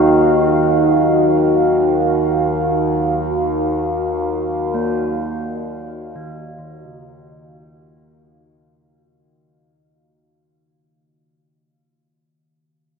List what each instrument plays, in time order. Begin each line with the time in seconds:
Already playing: synth drone D#2 D#3, ambient pad D#4 F#4 F5
4.74 singing bowl A#3
6.15 singing bowl D#3
6.58 singing bowl D#3
6.85 singing bowl C#3